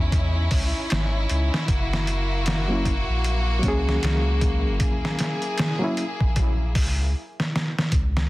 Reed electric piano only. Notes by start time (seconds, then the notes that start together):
2.68 F#3 A#3 C#4
2.72 E4
3.59 F#3 A#3
3.65 C#4 G#4
5.79 F#3 A#3 C#4
5.84 E4